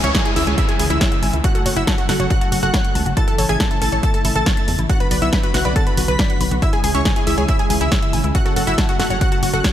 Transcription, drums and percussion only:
0.04 closed hi-hat
0.15 kick, snare, closed hi-hat
0.25 closed hi-hat
0.36 open hi-hat
0.47 closed hi-hat
0.58 kick, closed hi-hat
0.69 closed hi-hat
0.80 open hi-hat
0.90 closed hi-hat
1.01 kick, snare, closed hi-hat
1.12 closed hi-hat
1.23 open hi-hat
1.33 closed hi-hat
1.44 kick, closed hi-hat
1.55 closed hi-hat
1.66 open hi-hat
1.77 closed hi-hat
1.87 kick, snare, closed hi-hat
1.98 closed hi-hat
2.09 snare, open hi-hat
2.20 closed hi-hat
2.31 kick, closed hi-hat
2.41 closed hi-hat
2.52 open hi-hat
2.63 closed hi-hat
2.74 kick, snare, closed hi-hat
2.85 closed hi-hat
2.95 open hi-hat
3.06 closed hi-hat
3.17 kick, closed hi-hat
3.28 closed hi-hat
3.38 open hi-hat
3.49 closed hi-hat
3.60 kick, snare, closed hi-hat
3.71 closed hi-hat
3.82 open hi-hat
3.92 closed hi-hat
4.03 kick, closed hi-hat
4.14 closed hi-hat
4.25 open hi-hat
4.36 closed hi-hat
4.46 kick, snare, closed hi-hat
4.57 closed hi-hat
4.68 open hi-hat
4.79 closed hi-hat
4.89 kick, closed hi-hat
5.00 closed hi-hat
5.11 open hi-hat
5.22 closed hi-hat
5.33 kick, snare, closed hi-hat
5.43 closed hi-hat
5.54 snare, open hi-hat
5.65 closed hi-hat
5.76 kick, closed hi-hat
5.87 closed hi-hat
5.97 open hi-hat
6.08 closed hi-hat
6.19 kick, snare, closed hi-hat
6.30 closed hi-hat
6.41 open hi-hat
6.51 closed hi-hat
6.62 kick, closed hi-hat
6.73 closed hi-hat
6.84 open hi-hat
6.95 closed hi-hat
7.05 kick, snare, closed hi-hat
7.16 closed hi-hat
7.27 open hi-hat
7.38 closed hi-hat
7.49 kick, closed hi-hat
7.59 closed hi-hat
7.70 open hi-hat
7.81 closed hi-hat
7.92 kick, snare, closed hi-hat
8.03 closed hi-hat
8.13 open hi-hat
8.24 closed hi-hat
8.35 kick, closed hi-hat
8.46 closed hi-hat
8.56 open hi-hat
8.67 closed hi-hat
8.78 kick, snare, closed hi-hat
8.89 closed hi-hat
9.00 snare, open hi-hat
9.10 closed hi-hat
9.21 kick, closed hi-hat
9.32 closed hi-hat
9.43 open hi-hat
9.64 kick, snare, closed hi-hat

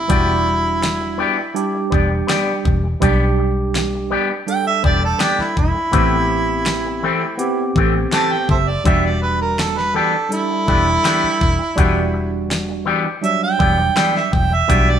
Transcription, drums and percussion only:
0.10 kick, closed hi-hat
0.83 snare, closed hi-hat
1.56 closed hi-hat
1.92 kick
2.29 snare, closed hi-hat
2.65 kick
3.02 kick, closed hi-hat
3.75 snare, closed hi-hat
4.48 closed hi-hat
4.84 kick
5.20 snare, closed hi-hat
5.40 snare
5.57 kick
5.93 kick, closed hi-hat
6.66 snare, closed hi-hat
7.39 closed hi-hat
7.76 kick
8.12 snare, closed hi-hat
8.49 kick
8.85 kick, closed hi-hat
9.59 snare, closed hi-hat
9.79 snare
10.32 closed hi-hat
10.68 kick
11.05 snare, closed hi-hat
11.41 kick
11.78 kick, closed hi-hat
12.51 snare, closed hi-hat
13.24 closed hi-hat
13.60 kick
13.97 snare, closed hi-hat
14.17 snare
14.33 kick
14.70 kick, closed hi-hat

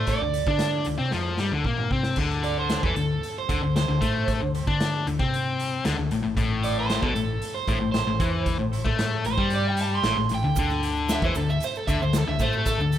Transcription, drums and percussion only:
0.07 kick, closed hi-hat
0.34 closed hi-hat
0.47 kick
0.59 snare, closed hi-hat
0.85 closed hi-hat
1.11 snare
1.37 snare
1.64 kick
1.77 mid tom
1.91 kick
2.03 snare
2.16 kick, crash
2.30 snare
2.43 closed hi-hat
2.69 snare, closed hi-hat
2.83 kick
2.96 closed hi-hat
3.23 closed hi-hat
3.49 kick, closed hi-hat
3.76 snare, closed hi-hat
4.02 kick, closed hi-hat
4.28 kick, closed hi-hat
4.55 closed hi-hat
4.67 kick
4.80 snare, closed hi-hat
5.07 closed hi-hat
5.20 kick
5.34 closed hi-hat
5.59 closed hi-hat
5.85 snare, closed hi-hat
6.11 closed hi-hat
6.37 kick, closed hi-hat
6.63 closed hi-hat
6.89 snare, closed hi-hat
7.03 kick
7.16 closed hi-hat
7.42 closed hi-hat
7.68 kick, closed hi-hat
7.94 snare, closed hi-hat
8.20 kick, closed hi-hat
8.46 kick, closed hi-hat
8.73 closed hi-hat
8.86 kick
8.99 snare, closed hi-hat
9.25 closed hi-hat
9.38 kick
9.50 closed hi-hat
9.77 closed hi-hat
10.03 snare, closed hi-hat
10.29 closed hi-hat
10.56 kick, closed hi-hat, shaker
10.69 snare, shaker
10.83 closed hi-hat
10.96 shaker
11.09 snare, closed hi-hat, shaker
11.22 kick, shaker
11.35 closed hi-hat, shaker
11.50 shaker
11.60 closed hi-hat, shaker
11.75 shaker
11.88 kick, closed hi-hat, shaker
12.02 shaker
12.13 snare, closed hi-hat, shaker
12.39 kick, closed hi-hat, shaker
12.53 shaker
12.65 kick, closed hi-hat, shaker
12.80 shaker
12.92 closed hi-hat, shaker

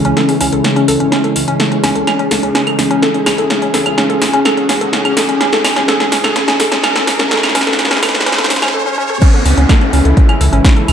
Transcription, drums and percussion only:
0.05 closed hi-hat
0.17 snare, closed hi-hat
0.29 open hi-hat
0.41 open hi-hat
0.53 closed hi-hat
0.64 snare, closed hi-hat
0.76 closed hi-hat
0.88 open hi-hat
1.00 closed hi-hat
1.12 snare, closed hi-hat
1.24 closed hi-hat
1.36 open hi-hat
1.48 closed hi-hat
1.60 snare, closed hi-hat
1.72 closed hi-hat
1.84 snare, open hi-hat
1.96 closed hi-hat
2.07 snare, closed hi-hat, claves
2.19 closed hi-hat
2.31 snare, open hi-hat
2.43 closed hi-hat
2.55 snare, closed hi-hat
2.67 closed hi-hat, claves
2.79 snare, open hi-hat
2.91 closed hi-hat
3.03 snare, closed hi-hat
3.14 closed hi-hat
3.26 snare, open hi-hat, claves
3.38 closed hi-hat
3.50 snare, closed hi-hat
3.62 closed hi-hat
3.74 snare, open hi-hat
3.86 closed hi-hat, claves
3.98 snare, closed hi-hat
4.10 closed hi-hat
4.22 snare, open hi-hat
4.33 closed hi-hat
4.45 snare, closed hi-hat, claves
4.57 closed hi-hat
4.69 snare, open hi-hat
4.81 closed hi-hat
4.93 snare, closed hi-hat
5.05 closed hi-hat, claves
5.17 snare, open hi-hat
5.29 closed hi-hat
5.41 snare, closed hi-hat
5.53 snare, closed hi-hat
5.64 snare, open hi-hat, claves
5.76 snare, closed hi-hat
5.88 snare, closed hi-hat
6.00 snare, closed hi-hat
6.12 snare, open hi-hat
6.24 snare, closed hi-hat, claves
6.36 snare, closed hi-hat
6.48 snare, closed hi-hat
6.60 snare, open hi-hat
6.72 snare, closed hi-hat
6.84 snare, closed hi-hat, claves
6.96 snare, closed hi-hat
7.07 snare, open hi-hat
7.19 snare, closed hi-hat
7.31 snare, closed hi-hat
7.37 snare
7.43 snare, closed hi-hat, claves
7.49 snare
7.55 snare, open hi-hat
7.61 snare
7.67 snare, closed hi-hat
7.73 snare
7.79 snare, closed hi-hat
7.85 snare
7.91 snare, closed hi-hat
7.97 snare
8.03 snare, open hi-hat, claves
8.09 snare
8.15 snare, closed hi-hat
8.20 snare
8.26 snare, closed hi-hat
8.32 snare
8.38 snare, closed hi-hat
8.44 snare
8.50 snare, open hi-hat
8.56 snare
8.62 snare, closed hi-hat, claves
8.68 snare
9.22 kick, closed hi-hat, crash
9.34 closed hi-hat
9.46 open hi-hat
9.58 closed hi-hat
9.69 kick, snare, closed hi-hat, claves
9.81 closed hi-hat
9.93 open hi-hat
10.05 closed hi-hat
10.17 kick, closed hi-hat
10.29 closed hi-hat, claves
10.41 open hi-hat
10.53 closed hi-hat
10.65 kick, snare, closed hi-hat
10.77 closed hi-hat
10.88 open hi-hat, claves

